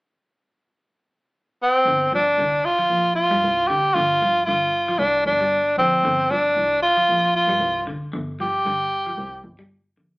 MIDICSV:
0, 0, Header, 1, 4, 480
1, 0, Start_track
1, 0, Key_signature, -2, "minor"
1, 0, Tempo, 523560
1, 1713, Time_signature, 4, 2, 24, 8
1, 9333, End_track
2, 0, Start_track
2, 0, Title_t, "Tenor saxophone"
2, 0, Program_c, 0, 66
2, 1490, Note_on_c, 0, 60, 93
2, 1928, Note_off_c, 0, 60, 0
2, 1966, Note_on_c, 0, 62, 87
2, 2429, Note_on_c, 0, 65, 93
2, 2442, Note_off_c, 0, 62, 0
2, 2883, Note_off_c, 0, 65, 0
2, 2888, Note_on_c, 0, 65, 88
2, 3369, Note_on_c, 0, 67, 100
2, 3382, Note_off_c, 0, 65, 0
2, 3615, Note_on_c, 0, 65, 106
2, 3629, Note_off_c, 0, 67, 0
2, 4078, Note_off_c, 0, 65, 0
2, 4083, Note_on_c, 0, 65, 81
2, 4570, Note_on_c, 0, 62, 90
2, 4584, Note_off_c, 0, 65, 0
2, 4820, Note_off_c, 0, 62, 0
2, 4826, Note_on_c, 0, 62, 87
2, 5274, Note_off_c, 0, 62, 0
2, 5300, Note_on_c, 0, 60, 86
2, 5783, Note_on_c, 0, 62, 89
2, 5797, Note_off_c, 0, 60, 0
2, 6250, Note_off_c, 0, 62, 0
2, 6255, Note_on_c, 0, 65, 94
2, 6708, Note_off_c, 0, 65, 0
2, 6744, Note_on_c, 0, 65, 79
2, 7193, Note_off_c, 0, 65, 0
2, 7710, Note_on_c, 0, 67, 106
2, 8634, Note_off_c, 0, 67, 0
2, 9333, End_track
3, 0, Start_track
3, 0, Title_t, "Clean electric guitar"
3, 0, Program_c, 1, 27
3, 1716, Note_on_c, 1, 50, 80
3, 1902, Note_off_c, 1, 50, 0
3, 1952, Note_on_c, 1, 53, 66
3, 2139, Note_off_c, 1, 53, 0
3, 2196, Note_on_c, 1, 50, 71
3, 2381, Note_off_c, 1, 50, 0
3, 2554, Note_on_c, 1, 53, 60
3, 2742, Note_off_c, 1, 53, 0
3, 3036, Note_on_c, 1, 55, 66
3, 3223, Note_off_c, 1, 55, 0
3, 3392, Note_on_c, 1, 50, 75
3, 3579, Note_off_c, 1, 50, 0
3, 3631, Note_on_c, 1, 50, 80
3, 3818, Note_off_c, 1, 50, 0
3, 3874, Note_on_c, 1, 53, 62
3, 4060, Note_off_c, 1, 53, 0
3, 4113, Note_on_c, 1, 50, 70
3, 4299, Note_off_c, 1, 50, 0
3, 4477, Note_on_c, 1, 53, 68
3, 4662, Note_off_c, 1, 53, 0
3, 4958, Note_on_c, 1, 55, 72
3, 5143, Note_off_c, 1, 55, 0
3, 5311, Note_on_c, 1, 50, 68
3, 5497, Note_off_c, 1, 50, 0
3, 5546, Note_on_c, 1, 50, 84
3, 5734, Note_off_c, 1, 50, 0
3, 5780, Note_on_c, 1, 53, 66
3, 5970, Note_off_c, 1, 53, 0
3, 6391, Note_on_c, 1, 53, 68
3, 6578, Note_off_c, 1, 53, 0
3, 6867, Note_on_c, 1, 55, 69
3, 7056, Note_off_c, 1, 55, 0
3, 7215, Note_on_c, 1, 50, 71
3, 7408, Note_off_c, 1, 50, 0
3, 7457, Note_on_c, 1, 50, 83
3, 7649, Note_off_c, 1, 50, 0
3, 7703, Note_on_c, 1, 53, 64
3, 7892, Note_off_c, 1, 53, 0
3, 7944, Note_on_c, 1, 50, 75
3, 8133, Note_off_c, 1, 50, 0
3, 8309, Note_on_c, 1, 53, 65
3, 8498, Note_off_c, 1, 53, 0
3, 8790, Note_on_c, 1, 55, 69
3, 8979, Note_off_c, 1, 55, 0
3, 9144, Note_on_c, 1, 50, 68
3, 9333, Note_off_c, 1, 50, 0
3, 9333, End_track
4, 0, Start_track
4, 0, Title_t, "Double bass"
4, 0, Program_c, 2, 43
4, 1705, Note_on_c, 2, 31, 88
4, 1928, Note_off_c, 2, 31, 0
4, 1940, Note_on_c, 2, 43, 76
4, 2165, Note_off_c, 2, 43, 0
4, 2183, Note_on_c, 2, 36, 74
4, 2406, Note_off_c, 2, 36, 0
4, 2659, Note_on_c, 2, 34, 83
4, 2997, Note_off_c, 2, 34, 0
4, 3029, Note_on_c, 2, 43, 86
4, 3139, Note_off_c, 2, 43, 0
4, 3152, Note_on_c, 2, 36, 88
4, 3371, Note_off_c, 2, 36, 0
4, 3629, Note_on_c, 2, 31, 96
4, 3861, Note_off_c, 2, 31, 0
4, 3866, Note_on_c, 2, 43, 81
4, 4088, Note_off_c, 2, 43, 0
4, 4101, Note_on_c, 2, 43, 93
4, 4549, Note_off_c, 2, 43, 0
4, 4578, Note_on_c, 2, 36, 96
4, 4803, Note_off_c, 2, 36, 0
4, 4823, Note_on_c, 2, 31, 84
4, 5294, Note_off_c, 2, 31, 0
4, 5299, Note_on_c, 2, 34, 94
4, 5417, Note_off_c, 2, 34, 0
4, 5540, Note_on_c, 2, 31, 90
4, 5763, Note_off_c, 2, 31, 0
4, 5786, Note_on_c, 2, 43, 78
4, 6006, Note_off_c, 2, 43, 0
4, 6022, Note_on_c, 2, 36, 84
4, 6244, Note_off_c, 2, 36, 0
4, 6503, Note_on_c, 2, 34, 88
4, 6838, Note_off_c, 2, 34, 0
4, 6853, Note_on_c, 2, 43, 84
4, 6968, Note_off_c, 2, 43, 0
4, 6972, Note_on_c, 2, 36, 86
4, 7199, Note_off_c, 2, 36, 0
4, 7461, Note_on_c, 2, 31, 90
4, 7695, Note_off_c, 2, 31, 0
4, 7701, Note_on_c, 2, 43, 75
4, 7924, Note_off_c, 2, 43, 0
4, 7936, Note_on_c, 2, 43, 90
4, 8386, Note_off_c, 2, 43, 0
4, 8414, Note_on_c, 2, 36, 96
4, 8641, Note_off_c, 2, 36, 0
4, 8656, Note_on_c, 2, 31, 89
4, 9138, Note_off_c, 2, 31, 0
4, 9144, Note_on_c, 2, 34, 84
4, 9260, Note_off_c, 2, 34, 0
4, 9333, End_track
0, 0, End_of_file